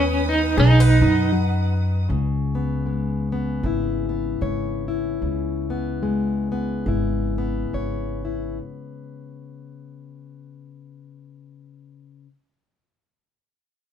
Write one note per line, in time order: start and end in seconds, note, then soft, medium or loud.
0.00 0.53 D#2 medium
0.00 0.51 G#3 medium
0.00 1.01 B3 medium
0.00 0.28 C#4 medium
0.00 0.54 B4 medium
0.00 2.05 B4 medium
0.00 0.55 G#5 medium
0.00 2.05 D#6 medium
0.29 0.58 D#4 medium
0.56 0.99 B1 loud
0.56 1.27 B2 medium
0.56 1.30 D#4 medium
0.56 0.80 G#4 medium
0.56 2.07 F#5 medium
0.80 2.10 B4 medium
1.01 2.05 F#2 medium
1.01 2.06 D#4 medium
1.32 2.02 F#3 medium
2.09 3.59 C#2 medium
2.09 5.22 C#3 medium
2.55 3.32 B3 soft
2.86 6.02 G#3 soft
3.32 4.09 B3 soft
3.63 4.37 G#1 medium
3.63 4.88 E4 soft
4.09 5.68 B3 soft
4.41 5.17 G#1 medium
4.41 5.73 C#5 soft
4.88 6.88 E4 soft
5.22 6.82 C#2 medium
5.22 12.27 C#3 soft
5.70 6.51 B3 soft
6.03 8.57 G#3 soft
6.52 7.36 B3 soft
6.86 7.68 G#1 medium
6.86 8.24 E4 soft
7.38 12.27 B3 soft
7.73 8.58 G#1 medium
7.73 8.58 C#5 soft
8.25 8.57 E4 soft